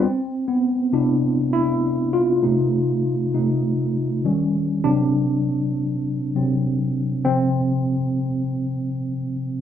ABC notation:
X:1
M:4/4
L:1/16
Q:"Swing 16ths" 1/4=100
K:Ddor
V:1 name="Tine electric piano"
C3 B,3 D4 E4 F2- | F6 z8 z2 | D16 | C12 z4 |]
V:2 name="Tine electric piano" clef=bass
z6 [C,B,E]8- [C,B,E]2 | [C,A,_E]6 [C,A,E]2 z4 [_E,G,_D]2 z2 | [C,^F,C]6 z4 [C,F,C]2 z4 | [C,F,C]6 z8 z2 |]